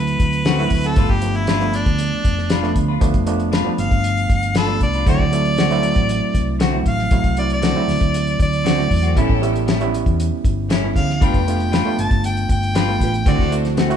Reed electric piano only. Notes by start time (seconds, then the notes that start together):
Already playing: F#3 A3 C4 E4
0.59 F#3 A3 C4 E4
0.97 F3 A3 B3 D4
1.22 F3 A3 B3 D4
1.60 F3 A3 B3 D4
2.63 F3 A3 B3 D4
3.01 F3 A3 B3 D4
3.27 F3 A3 B3 D4
3.65 F3 A3 B3 D4
4.67 F3 A3 B3 D4
5.07 F#3 A3 C4 E4
5.32 F#3 A3 C4 E4
5.70 F#3 A3 C4 E4
6.74 F#3 A3 C4 E4
7.11 F#3 A3 C4 E4
7.38 F#3 A3 C4 E4
7.75 F#3 A3 C4 E4
8.78 F#3 A3 C4 E4
9.16 G3 B3 C#4 E4
9.42 G3 B3 C#4 E4
9.80 G3 B3 C#4 E4
10.83 G3 B3 C#4 E4
11.21 A3 B3 D4 F4
11.47 A3 B3 D4 F4
11.85 A3 B3 D4 F4
12.88 A3 B3 D4 F4
13.27 A3 C4 E4 F#4
13.52 A3 C4 E4 F#4
13.89 A3 C4 E4 F#4